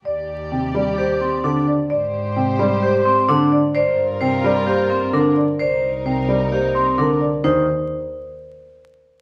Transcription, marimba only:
\new Staff \with { instrumentName = "Marimba" } { \time 4/4 \key ees \major \tempo 4 = 130 d''8 r8 g''8 d''8 c''8 r4 d''8 | d''8 r8 g''8 d''8 c''8 r4 d''8 | d''8 r8 g''8 d''8 c''8 r8 bes'8 d''8 | d''8 r8 g''8 d''8 c''8 r8 bes'8 d''8 |
c''8 r2. r8 | }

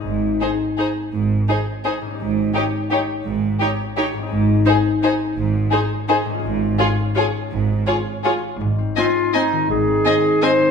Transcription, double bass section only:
\new Staff \with { instrumentName = "Double bass section" } { \clef bass \time 3/4 \key aes \major \tempo 4 = 166 aes,,4 r2 | aes,,4 r2 | aes,,4 r2 | aes,,4 r2 |
aes,,4 r2 | aes,,4 r2 | aes,,4 r2 | aes,,4 r2 |
aes,,4 r2 | aes,,4 r2 | }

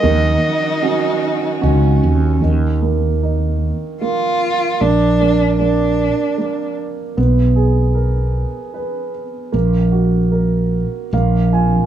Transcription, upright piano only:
\new Staff \with { instrumentName = "Upright piano" } { \time 3/4 \key ees \minor \tempo 4 = 76 ees4 <des' ees' ges'>4 <des' ees' ges'>4 | ees8 bes8 ees'4 bes4 | bes8 bes8 bes4 bes4 | ces'8 aes'8 bes'4 ces''4 |
bes8 ges'8 bes'4 <bes f''>8 <f' aes''>8 | }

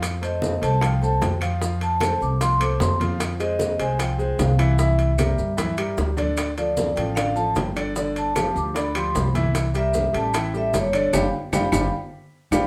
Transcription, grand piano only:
\new Staff \with { instrumentName = "Grand piano" } { \time 4/4 \key f \major \tempo 4 = 151 <f f' f''>8 <a a' c''>4 <a a' c''>8 <f f' f''>8 <a a' c''>4 <f f' f''>8 | <f f' f''>4 <a a' c''>4 <f f' f''>8 <a a' c''>4 <f f' f''>8~ | <f f' f''>8 <aes aes' c''>4 <aes aes' c''>8 <f f' f''>8 <aes aes' c''>4 <e e' e''>8 | <e e' e''>4 <g g' bes'>4 <e e' e''>8 <g g' bes'>4 <d d' d''>8~ |
<d d' d''>8 <f f' a'>4 <f f' a'>8 <d d' d''>8 <f f' a'>4 <d d' d''>8 | <d d' d''>4 <f f' g'>4 <d d' d''>8 <f f' g'>4 <e e' e''>8~ | <e e' e''>8 <g g' bes'>4 <g g' a'>8 <e e' e''>8 <g g' a'>4 <d d' d''>8 | <d' f' g'>8 r8 <d' f' g'>8 <d' f' g'>8 r4. <d' f' g'>8 | }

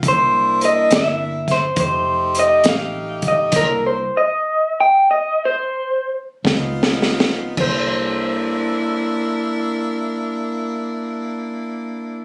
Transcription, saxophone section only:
\new Staff \with { instrumentName = "Saxophone section" } { \time 12/8 \key c \mixolydian \tempo 4. = 60 <bes d' e'>2. <a ees' g'>2. | <bes d' e'>4 r2. r8 <ces' ees' f'>4. | <bes d' e'>1. | }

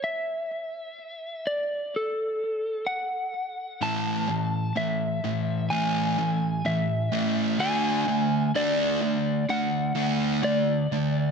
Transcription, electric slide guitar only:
\new Staff \with { instrumentName = "Electric slide guitar" } { \time 4/4 \key d \lydian \tempo 4 = 63 e''4. d''8 a'4 fis''4 | a''4 e''4 gis''4 e''4 | gis''4 d''4 fis''4 d''4 | }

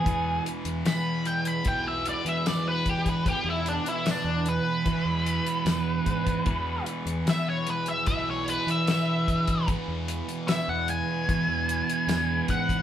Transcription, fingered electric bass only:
\new Staff \with { instrumentName = "Fingered electric bass" } { \clef bass \time 4/4 \key e \major \tempo 4 = 75 e,8 r16 e,16 e4 b,,8. e4~ e16~ | e16 e,8 r8 e,8 r16 e16 e,8 r16 e,8 gis,8 | e,8 r16 e,16 e4 b,,8. e4~ e16~ | e16 e,8 r8 e,8 r16 e16 e,8 r16 e,8 gis,8 | }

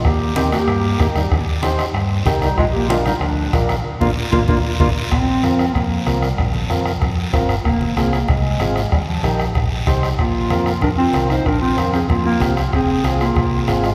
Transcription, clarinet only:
\new Staff \with { instrumentName = "Clarinet" } { \time 4/4 \key bes \mixolydian \tempo 4 = 189 g'4 g'8 g'4. g'8 ees'8~ | ees'8 r2. ees'8 | f'8 g'8 f'8 ees'8 d'2 | r8 f'8 r8 f'8 f'8 r8 f'8 r8 |
r1 | r1 | r1 | r1 |
f'2 bes'8 f'4 c''8 | bes'8 f'4 aes'8 f'8 f'4 r8 | aes'4. f'2 f'8 | }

